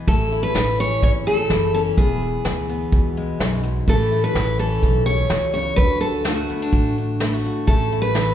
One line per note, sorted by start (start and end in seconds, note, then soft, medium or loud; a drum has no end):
0.00 0.54 E3 medium
0.07 0.44 A1 medium
0.07 1.03 A2 medium
0.07 0.78 C#4 medium
0.07 0.42 A4 medium
0.07 kick loud
0.07 closed hi-hat medium
0.32 1.50 E4 medium
0.43 0.80 B4 medium
0.55 0.95 A1 medium
0.55 1.49 E3 medium
0.55 snare loud
0.55 closed hi-hat medium
0.79 1.74 C#4 medium
0.79 1.02 C#5 medium
0.79 closed hi-hat medium
1.02 1.43 G#1 medium
1.02 1.97 E2 medium
1.02 1.10 C#5 loud
1.02 kick loud
1.02 closed hi-hat medium
1.27 1.95 A3 medium
1.27 1.73 A4 medium
1.50 1.91 F#1 medium
1.50 2.45 E3 medium
1.50 3.88 E4 medium
1.50 snare loud
1.50 closed hi-hat medium
1.74 1.96 C#4 medium
1.74 1.81 A4 medium
1.74 closed hi-hat medium
1.98 2.34 E1 medium
1.98 3.39 E2 medium
1.98 2.21 B3 medium
1.98 3.60 G#4 medium
1.98 kick medium
1.98 closed hi-hat medium
2.22 2.68 B3 medium
2.45 2.86 D2 medium
2.45 3.85 E3 medium
2.45 snare loud
2.45 closed hi-hat medium
2.69 3.88 B3 medium
2.69 closed hi-hat medium
2.92 3.33 C#2 medium
2.92 3.85 B2 medium
2.92 kick loud
2.92 closed hi-hat medium
3.17 3.85 G#3 medium
3.40 3.81 B1 medium
3.40 3.63 F#2 medium
3.40 snare loud
3.40 closed hi-hat medium
3.64 3.88 G#2 medium
3.64 closed hi-hat medium
3.88 4.24 A1 medium
3.88 4.83 A2 medium
3.88 4.34 E3 medium
3.88 5.08 A3 medium
3.88 4.59 C#4 medium
3.88 4.11 E4 medium
3.88 4.23 A4 medium
3.88 kick loud
3.88 closed hi-hat medium
4.12 5.78 E4 medium
4.24 4.59 B4 medium
4.35 4.75 A1 medium
4.35 5.75 E3 medium
4.35 snare loud
4.35 closed hi-hat medium
4.59 5.75 C#4 medium
4.59 5.06 A4 medium
4.59 closed hi-hat medium
4.83 5.23 B1 medium
4.83 5.78 E2 medium
4.83 kick medium
4.83 closed hi-hat medium
5.06 6.26 A3 medium
5.06 5.53 C#5 medium
5.30 5.71 C#2 medium
5.30 5.54 B2 medium
5.30 snare loud
5.30 closed hi-hat medium
5.54 5.78 C#3 medium
5.54 5.76 C#5 medium
5.54 closed hi-hat medium
5.76 6.50 D2 medium
5.76 7.68 D3 medium
5.76 6.01 F#4 medium
5.76 6.00 B4 medium
5.76 kick loud
5.76 closed hi-hat medium
6.01 7.21 F#4 medium
6.01 6.26 A4 medium
6.24 7.20 A3 medium
6.24 7.16 F#4 medium
6.24 snare loud
6.24 closed hi-hat medium
6.48 6.62 B3 medium
6.48 closed hi-hat medium
6.62 6.97 D4 soft
6.72 7.45 A1 medium
6.72 7.67 A2 medium
6.72 kick loud
6.72 closed hi-hat medium
6.98 7.66 D4 medium
7.20 8.34 A3 medium
7.20 7.33 E4 soft
7.20 snare loud
7.20 closed hi-hat medium
7.33 7.45 F#4 soft
7.44 7.66 F#4 medium
7.44 closed hi-hat medium
7.67 8.34 A1 medium
7.67 8.34 A2 medium
7.67 8.34 C#4 medium
7.67 8.01 A4 medium
7.67 kick medium
7.67 closed hi-hat medium
7.93 8.34 E4 medium
8.02 8.34 B4 medium
8.15 8.34 E3 medium
8.15 snare loud
8.15 closed hi-hat medium